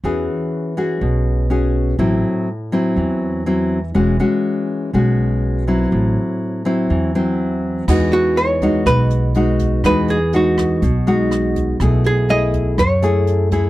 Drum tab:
CC |--------|--------|--------|--------|
HH |--------|--------|--------|--------|
SD |--------|--------|--------|--------|
BD |--------|--------|--------|--------|

CC |x-------|--------|--------|
HH |-xxxxxxx|xxxxxxxx|xxxxxxxx|
SD |r---r---|r--r--r-|r---r---|
BD |o--oo--o|o--oo--o|o--oo--o|